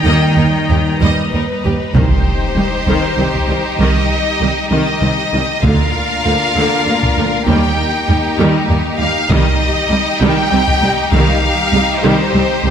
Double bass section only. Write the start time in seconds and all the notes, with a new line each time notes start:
0.04 D#2
0.36 D#2
0.69 D#2
1.01 D#2
1.32 D#2
1.64 D#2
1.95 C2
3.79 C2
5.63 D2
7.47 D#2
9.30 C2
11.13 C2